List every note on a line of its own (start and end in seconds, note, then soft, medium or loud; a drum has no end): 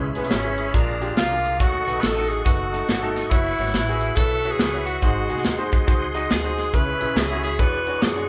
0.00 0.12 C#2 loud
0.00 0.55 C#3 medium
0.00 1.58 G#4 medium
0.00 0.73 C#5 medium
0.00 0.73 E5 medium
0.00 0.73 B5 medium
0.15 0.29 B1 medium
0.15 0.31 G#3 medium
0.15 0.33 B3 medium
0.15 0.31 C#4 medium
0.15 0.31 E4 medium
0.15 0.31 B4 medium
0.15 closed hi-hat medium
0.23 snare soft
0.30 0.68 G#1 medium
0.30 0.75 C#4 medium
0.30 snare loud
0.30 closed hi-hat medium
0.45 0.66 G#3 medium
0.45 0.66 C#4 medium
0.45 0.66 E4 medium
0.45 0.66 B4 medium
0.58 closed hi-hat medium
0.74 1.11 A#1 medium
0.74 1.40 A#2 medium
0.74 0.92 G#3 medium
0.74 1.17 D4 medium
0.74 0.92 D4 medium
0.74 0.92 F4 medium
0.74 0.92 A#4 medium
0.74 1.60 D5 medium
0.74 1.59 F5 medium
0.74 1.60 A#5 medium
0.74 kick medium
0.74 closed hi-hat medium
1.01 1.17 G#3 medium
1.01 1.17 D4 medium
1.01 1.17 F4 medium
1.01 1.17 G4 medium
1.01 closed hi-hat medium
1.17 1.60 C2 medium
1.17 1.61 F4 loud
1.17 snare loud
1.17 closed hi-hat medium
1.31 1.52 G#3 medium
1.31 1.52 D4 medium
1.31 1.52 F4 medium
1.31 1.52 A#4 medium
1.44 closed hi-hat medium
1.59 1.84 D#2 medium
1.59 2.26 D#3 medium
1.59 1.78 A3 medium
1.59 1.78 D#4 medium
1.59 2.00 F#4 loud
1.59 1.78 F#4 medium
1.59 3.30 A4 medium
1.59 1.78 C#5 medium
1.59 3.30 D#5 medium
1.59 6.70 F#5 medium
1.59 5.00 C#6 medium
1.59 kick medium
1.59 closed hi-hat medium
1.87 2.01 B1 medium
1.87 2.03 A3 medium
1.87 2.03 D#4 medium
1.87 2.02 F#4 medium
1.87 2.03 B4 medium
1.87 closed hi-hat medium
1.99 2.30 A4 loud
1.99 2.02 B4 medium
1.99 closed hi-hat medium
2.03 2.40 A1 medium
2.03 snare medium
2.17 2.38 A3 medium
2.17 2.38 D#4 medium
2.17 2.38 F#4 medium
2.17 2.38 D#5 medium
2.29 2.44 G#4 medium
2.29 closed hi-hat medium
2.45 2.82 F#1 medium
2.45 2.64 A3 medium
2.45 2.64 D#4 medium
2.45 3.11 F#4 loud
2.45 2.64 F#4 medium
2.45 2.64 B4 medium
2.45 kick medium
2.45 closed hi-hat medium
2.73 2.88 A3 medium
2.73 2.88 D#4 medium
2.73 2.88 F#4 medium
2.73 2.88 A4 medium
2.73 closed hi-hat medium
2.89 3.25 G1 medium
2.89 snare medium
2.89 closed hi-hat medium
3.03 3.23 A3 medium
3.03 3.23 D#4 medium
3.03 3.24 F#4 medium
3.03 3.24 A4 loud
3.16 snare soft
3.16 closed hi-hat medium
3.30 3.55 F#1 medium
3.30 3.49 B3 medium
3.30 4.17 E4 loud
3.30 3.49 E4 medium
3.30 3.49 F#4 medium
3.30 5.01 B4 medium
3.30 3.49 C#5 medium
3.30 5.01 E5 medium
3.30 kick medium
3.30 closed hi-hat medium
3.59 3.72 G#1 medium
3.59 3.74 B3 medium
3.59 3.74 E4 medium
3.59 3.74 F#4 medium
3.59 3.74 C#5 medium
3.59 closed hi-hat medium
3.66 snare soft
3.74 4.11 A1 medium
3.74 snare medium
3.74 closed hi-hat medium
3.89 4.09 B3 medium
3.89 4.09 E4 medium
3.89 4.09 F#4 medium
3.89 4.09 G#4 medium
4.01 closed hi-hat medium
4.16 4.54 B1 medium
4.16 4.35 B3 medium
4.16 4.35 E4 medium
4.16 4.35 F#4 medium
4.16 4.53 A4 loud
4.16 4.35 C#5 medium
4.16 kick loud
4.16 closed hi-hat medium
4.44 4.59 B3 medium
4.44 4.59 E4 medium
4.44 4.59 F#4 medium
4.44 4.60 C#5 medium
4.44 closed hi-hat medium
4.51 4.87 G#4 loud
4.59 4.96 C#2 medium
4.59 snare loud
4.59 closed hi-hat medium
4.73 4.94 B3 medium
4.73 4.94 E4 medium
4.73 4.95 F#4 medium
4.73 4.95 C#5 medium
4.86 5.72 F#4 medium
4.86 closed hi-hat medium
5.02 5.26 G#1 medium
5.02 5.69 G#2 medium
5.02 5.20 G#3 medium
5.02 5.20 D#4 medium
5.02 5.20 F#4 medium
5.02 6.72 G#4 medium
5.02 5.20 C5 medium
5.02 6.72 D#5 medium
5.02 6.73 C6 medium
5.02 kick medium
5.02 closed hi-hat medium
5.29 5.43 C2 medium
5.29 5.45 G#3 medium
5.29 5.45 D#4 medium
5.29 5.45 F#4 medium
5.29 5.45 G#4 medium
5.29 closed hi-hat medium
5.37 snare soft
5.44 5.82 D#2 medium
5.44 snare medium
5.44 closed hi-hat medium
5.58 5.80 G#3 medium
5.58 5.80 D#4 medium
5.58 5.80 F#4 medium
5.58 5.80 C5 medium
5.72 kick medium
5.72 closed hi-hat medium
5.87 6.25 C#2 medium
5.87 6.05 G#3 medium
5.87 6.05 D#4 medium
5.87 6.05 F#4 medium
5.87 6.06 C5 medium
5.87 kick loud
5.87 closed hi-hat medium
6.15 6.30 G#3 medium
6.15 6.30 D#4 medium
6.15 6.30 F#4 medium
6.15 6.30 D#5 medium
6.15 closed hi-hat medium
6.30 6.67 D2 medium
6.30 6.76 G#4 medium
6.30 snare loud
6.30 closed hi-hat medium
6.44 6.65 G#3 medium
6.44 6.66 D#4 medium
6.44 6.65 F#4 medium
6.44 6.65 C5 medium
6.58 snare soft
6.58 closed hi-hat medium
6.73 6.97 C#2 medium
6.73 7.40 C#3 medium
6.73 6.91 G#3 medium
6.73 6.91 C#4 medium
6.73 6.91 E4 medium
6.73 8.29 G#4 medium
6.73 6.92 B4 medium
6.73 7.19 B4 loud
6.73 7.59 C#5 medium
6.73 7.58 E5 medium
6.73 7.59 B5 medium
6.73 kick medium
6.73 closed hi-hat medium
7.01 7.14 B1 medium
7.01 7.16 G#3 medium
7.01 7.16 C#4 medium
7.01 7.16 E4 medium
7.01 7.16 B4 medium
7.01 closed hi-hat medium
7.16 7.59 C#2 medium
7.16 7.43 G#4 medium
7.16 snare loud
7.16 closed hi-hat medium
7.30 7.51 G#3 medium
7.30 7.51 C#4 soft
7.30 7.51 E4 medium
7.30 7.51 F#4 medium
7.44 7.61 G#4 medium
7.44 closed hi-hat medium
7.59 7.96 E2 medium
7.59 8.26 E3 medium
7.59 7.77 G#3 medium
7.59 7.77 D4 medium
7.59 7.77 F#4 medium
7.59 8.03 B4 medium
7.59 7.77 C#5 medium
7.59 8.29 D5 medium
7.59 8.29 F#5 medium
7.59 8.29 C#6 medium
7.59 kick loud
7.59 closed hi-hat medium
7.87 8.02 G#3 medium
7.87 8.02 D4 medium
7.87 8.02 F#4 medium
7.87 8.02 C#5 medium
7.87 closed hi-hat medium
8.02 8.29 F#2 medium
8.02 8.29 G#4 medium
8.02 snare loud
8.02 closed hi-hat medium
8.16 8.29 G#3 medium
8.16 8.29 D4 medium
8.16 8.29 F#4 medium
8.16 8.29 C#5 medium